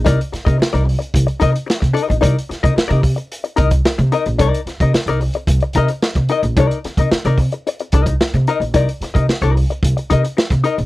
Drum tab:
HH |xxxx-xoxxxxx-xxx|xxxx-xoxxxxx-xxx|xxxx-xoxxxxx-xxx|xxxx-xoxxxxx-xxx|
SD |--o-o-------o---|--o-o-------o---|--o-o-------o---|--o-o-------o---|
BD |o--o----o-o--o--|o--o--o---oo----|o--o----o-o--o--|o--o--o---oo----|

HH |xxxx-xoxxxxx-xxx|
SD |--o-o-------o---|
BD |o--o----o-o--o--|